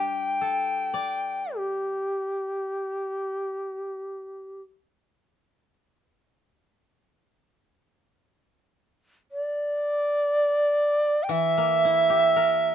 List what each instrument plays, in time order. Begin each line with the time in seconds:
Already playing: koto G3 D4 G4, shakuhachi G5
0.41 koto A4
0.94 koto D5
1.56 shakuhachi G4
9.32 shakuhachi D5
11.23 shakuhachi G5
11.29 koto E3, shakuhachi E5
11.58 koto A#3
11.85 koto E4
12.10 koto G4
12.36 koto A#4